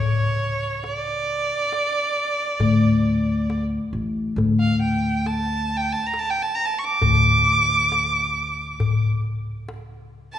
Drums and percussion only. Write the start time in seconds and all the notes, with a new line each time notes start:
0.84 darbuka tek
1.73 darbuka tek
2.16 darbuka ka
2.60 darbuka dum
3.05 darbuka ka
3.50 darbuka tek
3.93 darbuka ka
4.38 darbuka dum
5.26 darbuka tek
6.14 darbuka tek
6.59 darbuka ka
7.02 darbuka dum
7.47 darbuka ka
7.92 darbuka tek
8.80 darbuka dum
9.24 darbuka ka
9.69 darbuka tek
10.35 darbuka ka